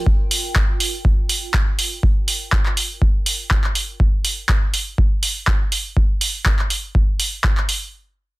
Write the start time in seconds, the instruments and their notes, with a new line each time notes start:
Already playing: ambient pad F4 A#4 G5
0.06 kick
0.31 open hi-hat
0.56 kick, clap
0.80 open hi-hat
1.05 kick
1.29 open hi-hat
1.54 kick, clap
1.79 open hi-hat
2.03 kick
2.28 open hi-hat
2.52 kick, clap
2.66 clap
2.77 open hi-hat
3.02 kick
3.26 open hi-hat
3.51 kick, clap
3.64 clap
3.75 open hi-hat
4.00 kick
4.25 open hi-hat
4.49 kick, clap
4.74 open hi-hat
4.98 kick
5.23 open hi-hat
5.47 kick, clap
5.72 open hi-hat
5.97 kick
6.21 open hi-hat
6.46 kick, clap
6.59 clap
6.70 open hi-hat
6.95 kick
7.20 open hi-hat
7.44 kick, clap
7.57 clap
7.69 open hi-hat